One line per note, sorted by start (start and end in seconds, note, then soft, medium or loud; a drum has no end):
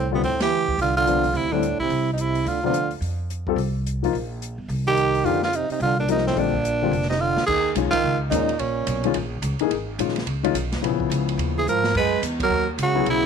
0.00 0.20 C2 medium
0.11 0.23 G2 medium
0.11 0.22 D3 medium
0.11 0.22 G3 medium
0.11 0.23 B3 medium
0.11 0.22 C4 medium
0.11 0.22 F4 medium
0.22 0.65 D2 medium
0.22 0.40 A2 medium
0.22 0.40 C4 medium
0.22 open hi-hat soft
0.40 0.77 E3 medium
0.40 0.77 G4 medium
0.40 snare medium
0.40 ride medium
0.68 0.78 D2 medium
0.68 kick soft
0.78 1.32 C2 medium
0.78 0.95 D3 medium
0.78 0.96 F4 medium
0.78 open hi-hat soft
0.97 1.37 D3 medium
0.97 1.38 F4 medium
1.07 1.22 C3 medium
1.07 1.22 F3 medium
1.07 1.23 B3 medium
1.07 1.23 D4 medium
1.07 closed hi-hat soft
1.24 open hi-hat soft
1.34 1.76 D2 medium
1.34 1.54 C3 medium
1.34 1.54 E4 medium
1.34 open hi-hat soft
1.52 1.80 A2 medium
1.52 1.62 D3 medium
1.52 1.62 G3 medium
1.52 1.62 C4 medium
1.52 1.79 D4 medium
1.52 1.63 E4 medium
1.63 closed hi-hat soft
1.79 2.11 C3 medium
1.79 2.11 E4 medium
1.79 muted upright bass stroke soft
1.79 kick soft
1.89 2.43 C2 medium
1.89 open hi-hat soft
2.13 2.20 B2 soft
2.13 2.22 D#4 medium
2.18 2.48 C3 medium
2.18 2.49 E4 medium
2.18 closed hi-hat soft
2.35 open hi-hat soft
2.45 2.99 D2 medium
2.45 2.63 D3 medium
2.45 2.64 F4 medium
2.45 open hi-hat soft
2.63 2.73 C3 medium
2.63 2.89 D3 medium
2.63 2.73 F3 medium
2.63 2.74 B3 medium
2.63 2.74 D4 medium
2.63 2.90 F4 medium
2.74 closed hi-hat soft
2.91 open hi-hat soft
3.01 3.54 F2 medium
3.01 open hi-hat soft
3.30 closed hi-hat soft
3.47 3.57 G3 medium
3.47 3.57 C4 medium
3.47 3.57 F4 medium
3.47 3.57 A4 medium
3.47 kick soft
3.56 4.10 C2 medium
3.56 open hi-hat soft
3.86 closed hi-hat soft
4.03 4.12 F3 medium
4.03 4.13 A#3 medium
4.03 4.13 D#4 soft
4.03 4.13 F4 medium
4.03 open hi-hat soft
4.13 4.55 A#1 medium
4.13 open hi-hat soft
4.42 closed hi-hat soft
4.58 4.68 G1 medium
4.68 5.22 C2 medium
4.68 open hi-hat soft
4.87 5.29 D#3 medium
4.87 5.26 G4 loud
4.97 closed hi-hat soft
5.15 open hi-hat soft
5.24 5.66 F2 medium
5.24 5.42 D3 medium
5.24 5.40 F3 medium
5.24 5.40 A#3 medium
5.24 5.40 D#4 medium
5.24 5.42 F4 medium
5.24 5.41 G4 medium
5.24 open hi-hat soft
5.43 5.56 D3 medium
5.43 5.57 F4 medium
5.43 snare soft
5.53 5.69 C3 medium
5.53 5.71 D#4 medium
5.53 closed hi-hat soft
5.69 5.79 C3 medium
5.69 5.81 D#4 medium
5.69 muted upright bass stroke soft
5.69 open hi-hat soft
5.80 6.33 C2 medium
5.80 5.97 D3 medium
5.80 5.97 F4 medium
5.80 open hi-hat soft
5.98 6.08 A#2 medium
5.98 6.09 D4 medium
6.09 6.25 C3 medium
6.09 6.36 F3 medium
6.09 6.37 A#3 medium
6.09 6.37 D#4 medium
6.09 6.26 D#4 medium
6.09 6.37 A#4 medium
6.09 closed hi-hat soft
6.18 snare soft
6.25 6.39 A2 medium
6.25 6.40 C4 medium
6.25 snare soft
6.36 6.89 A#1 medium
6.36 7.09 A#2 medium
6.36 6.52 D3 medium
6.36 6.52 G3 medium
6.36 6.52 C4 medium
6.36 7.09 D4 medium
6.36 6.52 F4 medium
6.36 open hi-hat soft
6.54 kick soft
6.65 closed hi-hat soft
6.82 6.91 D3 medium
6.82 6.92 G3 medium
6.82 6.92 C4 medium
6.82 6.92 F4 medium
6.91 7.33 F1 medium
6.91 open hi-hat soft
7.02 snare soft
7.09 7.21 C3 medium
7.09 7.22 D#4 medium
7.09 snare soft
7.19 7.46 D3 medium
7.19 7.46 F4 medium
7.36 7.47 E2 medium
7.36 snare medium
7.46 7.75 D#2 medium
7.46 7.73 D#3 medium
7.46 7.73 G#4 medium
7.46 kick medium
7.46 crash medium
7.75 7.91 B1 medium
7.75 7.91 D#3 medium
7.75 7.91 G#3 medium
7.75 7.92 C#4 medium
7.75 7.92 F4 medium
7.75 hi-hat pedal medium
7.75 ride medium
7.91 8.18 D#3 medium
7.91 8.18 F4 medium
7.91 muted upright bass stroke soft
7.91 kick medium
7.91 ride medium
8.04 8.30 C#2 medium
8.29 8.58 D#2 medium
8.29 8.57 A#2 medium
8.29 8.47 D#3 medium
8.29 8.47 G#3 medium
8.29 8.47 C#4 medium
8.29 8.61 D#4 medium
8.29 8.47 D#4 medium
8.29 hi-hat pedal medium
8.29 ride medium
8.49 ride soft
8.57 8.86 A#1 medium
8.57 9.14 A#2 medium
8.57 9.15 C#4 medium
8.57 ride medium
8.87 9.14 B1 medium
8.87 hi-hat pedal medium
8.87 ride medium
9.04 9.14 D#3 medium
9.04 9.14 G#3 medium
9.04 9.15 C#4 medium
9.04 9.15 F4 medium
9.04 ride soft
9.14 9.41 A#1 medium
9.14 ride medium
9.42 9.58 C#2 medium
9.42 hi-hat pedal medium
9.42 ride medium
9.59 9.70 E3 medium
9.59 9.70 A#3 medium
9.59 9.70 D#4 medium
9.59 9.71 G#4 medium
9.59 ride soft
9.70 9.98 G#1 medium
9.70 ride medium
9.99 10.25 A#1 loud
9.99 10.14 D#3 medium
9.99 10.14 G#3 medium
9.99 10.15 C#4 soft
9.99 10.15 F4 medium
9.99 hi-hat pedal soft
9.99 ride medium
10.08 snare soft
10.16 snare soft
10.16 ride soft
10.26 10.53 C#2 medium
10.26 ride medium
10.43 10.53 D#3 medium
10.43 10.54 G#3 medium
10.43 10.54 C#4 medium
10.43 10.54 F4 medium
10.43 ride soft
10.54 10.80 B1 medium
10.54 hi-hat pedal medium
10.54 ride medium
10.72 snare soft
10.72 ride soft
10.81 11.09 A#1 medium
10.81 11.60 C#3 medium
10.81 11.60 F3 medium
10.81 11.60 B3 medium
10.81 11.61 E4 medium
10.81 ride medium
11.00 kick medium
11.10 11.37 C#2 medium
11.10 hi-hat pedal medium
11.10 ride medium
11.29 ride soft
11.37 11.65 D#2 medium
11.37 ride medium
11.57 11.66 E3 medium
11.57 11.67 G#4 medium
11.66 11.93 G#2 medium
11.66 11.93 F3 medium
11.66 11.94 A#4 medium
11.66 hi-hat pedal medium
11.84 snare medium
11.95 12.21 F#2 medium
11.95 12.22 G#3 medium
11.95 12.22 B4 medium
11.95 kick medium
11.95 crash medium
12.22 12.49 E2 medium
12.22 hi-hat pedal medium
12.22 ride medium
12.40 12.67 F#3 medium
12.40 12.67 A#4 medium
12.40 kick medium
12.40 ride medium
12.49 12.77 D#2 medium
12.78 13.05 C#2 medium
12.78 13.06 C#3 medium
12.78 hi-hat pedal medium
12.78 ride medium
12.83 13.06 F#4 medium
12.95 13.26 F#3 medium
12.95 13.26 B3 medium
12.95 13.26 E4 medium
12.95 13.26 G#4 medium
13.06 13.26 B1 medium
13.06 13.26 C#3 medium
13.06 ride medium
13.10 13.26 E4 medium